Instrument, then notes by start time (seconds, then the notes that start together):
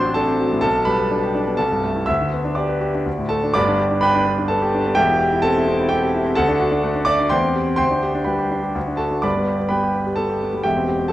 grand piano
Already playing: A1 A2 F#3 C4 D4 F#4 C5 D5 E5 C6 D6 E6
0.05 C4
0.14 D4 A4 A5
0.27 C4
0.40 F#3
0.52 A2
0.61 B1 A4 A5
0.76 B2
0.85 G3 B4 B5
0.99 B3
1.11 D4
1.23 G4
1.35 D4
1.47 B3
1.57 C2 A4 A5
1.72 G2
1.83 A3
1.96 E4
2.06 D2 E5 E6
2.21 D3
2.33 B3
2.44 D4
2.55 G4 D5 D6
2.69 B4
2.81 G4
2.95 D4
3.06 D2
3.19 A2
3.29 A3 A4 A5
3.44 D4
3.53 G1 G2 D5 B5 D6
3.68 D4
3.79 G4
3.91 D4
4.01 B3 B4 G5 B5
4.15 D4
4.27 B3
4.38 D4
4.48 B3 A4 A5
4.62 G4
4.74 D4
4.87 B3
4.95 E1 E2 G4 E5 G5
5.10 E4
5.21 G4
5.33 E4
5.42 C4 A4 A5
5.56 E4
5.68 C4
5.80 E4
5.89 C4 G4 G5
6.03 G4
6.14 E4
6.26 C4
6.35 D2 A4 F#5 A5
6.48 D4
6.61 F#4
6.72 D4
6.83 A3
6.95 D4
7.05 A3 D5 D6
7.20 D4
7.30 E2 C5 G5 C6
7.44 C4
7.55 G4
7.67 C4
7.76 D2 C5 G5 C6
7.91 D4
8.03 G4
8.15 D4
8.25 G3 B4 G5 B5
8.39 G4
8.51 D4
8.64 G4
8.75 D2
8.87 D4
8.97 F#4 A4 A5
9.11 D4
9.22 G1 G2 D5 B5 D6
9.36 B3
9.47 G4
9.59 B3
9.69 G3 B4 G5 B5
9.83 G4
9.94 B3
10.07 G4
10.16 B3 A4 A5
10.29 G4
10.42 B3
10.53 G3
10.64 E1 E2 G4 E5 G5
10.77 C4
10.89 G4
10.99 C4
11.08 A5